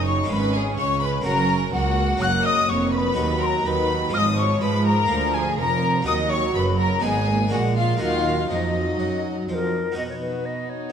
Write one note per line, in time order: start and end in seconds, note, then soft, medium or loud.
0.00 0.29 F#1 medium
0.00 0.26 F#2 medium
0.00 0.29 F#2 medium
0.00 0.30 D#4 medium
0.00 0.25 F#4 medium
0.05 0.30 C#5 medium
0.05 0.30 C#6 medium
0.24 1.19 G#3 medium
0.24 1.20 C#4 medium
0.24 1.21 F4 medium
0.29 0.76 G#1 medium
0.29 0.74 G#2 medium
0.29 0.77 G#2 medium
0.29 1.24 C#4 medium
0.29 0.54 B4 medium
0.29 0.53 B5 medium
0.29 0.37 B5 medium
0.53 0.78 G#4 medium
0.53 0.61 G#5 medium
0.53 0.78 G#5 medium
0.77 1.24 C#2 medium
0.77 1.22 C#3 medium
0.77 1.25 C#3 medium
0.77 1.01 C#5 medium
0.77 1.01 C#6 loud
0.77 1.02 C#6 medium
1.01 1.25 B4 medium
1.01 1.09 B5 loud
1.01 1.06 C#6 medium
1.05 1.25 B5 medium
1.21 1.72 F#1 medium
1.21 2.16 A#3 medium
1.21 2.17 C#4 medium
1.21 1.72 C#4 medium
1.21 2.18 F#4 medium
1.21 1.72 A#4 medium
1.21 1.72 A#5 loud
1.26 1.73 F#2 medium
1.26 1.70 F#2 medium
1.26 1.52 A#5 loud
1.73 2.20 C#2 medium
1.73 2.18 C#2 medium
1.73 2.20 A#3 medium
1.73 2.21 F#4 medium
1.73 2.20 F#5 loud
1.73 2.23 F#5 medium
2.17 2.66 F#1 medium
2.17 2.66 A#3 soft
2.17 2.66 A#3 medium
2.17 2.67 C#4 medium
2.17 3.14 F#4 medium
2.17 2.47 F#6 medium
2.22 2.65 F#2 medium
2.22 2.66 F#2 medium
2.22 2.46 F#5 loud
2.22 2.46 F#6 loud
2.45 2.69 D#5 medium
2.45 2.69 D#6 loud
2.45 2.71 D#6 medium
2.69 3.16 F1 medium
2.69 3.17 F2 medium
2.69 3.14 F2 medium
2.69 3.16 A#3 medium
2.69 2.93 C#5 medium
2.69 2.93 C#6 medium
2.92 3.40 B4 medium
2.92 3.41 B5 loud
2.92 2.98 C#6 medium
2.97 3.41 B5 medium
3.13 3.64 F#3 medium
3.13 4.09 B3 medium
3.13 4.09 D#4 medium
3.13 4.10 F#4 medium
3.17 3.65 D#2 medium
3.17 3.64 D#2 medium
3.17 3.62 D#2 medium
3.41 3.65 A#4 medium
3.41 3.66 A#5 loud
3.41 3.47 C6 medium
3.46 3.65 A#5 medium
3.65 4.13 D#2 medium
3.65 4.13 D#3 medium
3.65 4.10 D#3 medium
3.65 4.13 F#3 medium
3.65 4.14 B4 medium
3.65 4.14 B5 loud
3.65 4.15 B5 medium
4.09 4.60 G#3 medium
4.09 5.06 F4 medium
4.13 4.61 G#1 medium
4.13 4.58 G#2 medium
4.13 4.61 G#2 medium
4.13 4.60 F3 medium
4.13 4.22 D#5 loud
4.13 4.38 D#6 loud
4.13 4.19 F6 medium
4.18 4.38 D#6 medium
4.38 4.62 C#5 medium
4.38 4.62 C#6 medium
4.61 5.09 G#2 medium
4.61 5.08 F3 medium
4.61 5.06 G#3 medium
4.61 5.09 G#3 medium
4.61 4.86 B4 medium
4.61 4.85 B5 loud
4.61 4.88 B5 medium
4.85 5.34 A#4 medium
4.85 5.33 A#5 loud
4.85 5.35 A#5 medium
5.06 5.57 D2 medium
5.06 5.56 F3 medium
5.06 6.01 A#3 medium
5.06 6.03 F4 medium
5.11 5.55 D2 medium
5.33 5.59 G#4 medium
5.33 5.58 G#5 medium
5.58 6.06 F1 medium
5.58 6.03 F2 medium
5.58 6.06 F2 medium
5.58 6.05 F3 medium
5.58 6.07 A#4 medium
5.58 6.05 A#5 loud
5.58 6.06 A#5 medium
6.02 6.54 D#2 medium
6.02 7.03 F#3 medium
6.02 6.98 A#3 medium
6.02 6.99 D#4 medium
6.02 7.00 F#4 soft
6.02 6.14 D#6 loud
6.07 6.54 D#2 medium
6.07 6.51 D#2 medium
6.07 6.31 D#5 medium
6.07 6.13 D#6 medium
6.30 6.55 C#5 medium
6.30 6.54 C#6 loud
6.30 6.38 C#6 medium
6.55 7.03 F#1 medium
6.55 7.02 F#2 medium
6.55 7.00 F#2 medium
6.55 6.79 B4 medium
6.55 6.63 B5 loud
6.55 6.80 B5 medium
6.79 7.03 A#4 medium
6.79 7.03 A#5 medium
6.79 7.04 A#5 medium
7.00 7.51 G#1 medium
7.00 7.51 G#2 medium
7.00 7.49 B3 medium
7.00 7.28 B3 medium
7.00 7.49 D#4 medium
7.00 7.49 G#4 medium
7.00 7.51 G#4 medium
7.00 7.52 G#5 medium
7.04 7.48 G#2 medium
7.04 7.52 G#5 medium
7.27 7.52 A#3 medium
7.48 8.01 A#1 medium
7.48 8.00 G#3 medium
7.48 7.96 A#3 medium
7.48 7.98 D4 medium
7.48 7.60 F#4 medium
7.48 7.99 G#4 medium
7.48 7.76 F#5 medium
7.52 7.97 A#2 medium
7.52 8.01 A#2 medium
7.52 7.58 G#5 medium
7.57 7.76 F#5 medium
7.76 8.00 F4 medium
7.76 7.99 F5 medium
7.76 8.01 F5 medium
7.97 8.48 F#3 medium
7.97 8.47 A#3 medium
7.97 9.92 D#4 medium
7.97 8.49 F4 medium
7.97 9.93 F#4 soft
7.97 8.49 F5 medium
8.01 8.49 D#2 medium
8.01 8.49 D#3 medium
8.01 8.46 D#3 medium
8.01 8.50 F5 medium
8.49 8.98 F2 medium
8.49 8.98 F3 medium
8.49 8.95 F3 medium
8.49 9.74 F#3 medium
8.49 9.71 D#4 medium
8.49 9.72 D#5 medium
8.49 9.24 D#5 medium
8.99 9.47 F#2 medium
8.99 9.47 F#3 medium
8.99 9.44 F#3 medium
9.48 9.96 F2 medium
9.48 9.96 F3 medium
9.48 9.93 F3 medium
9.48 9.55 C5 medium
9.54 9.94 A#4 medium
9.92 10.89 B3 soft
9.92 10.89 D#4 soft
9.92 10.90 F#4 soft
9.96 10.90 B2 soft
9.96 10.92 B3 soft
9.96 10.92 D#4 soft
9.96 10.90 F#4 soft
9.96 10.03 D#5 medium
10.09 10.15 C#5 soft
10.21 10.47 B4 soft
10.45 10.71 D#5 medium
10.69 10.92 C#5 medium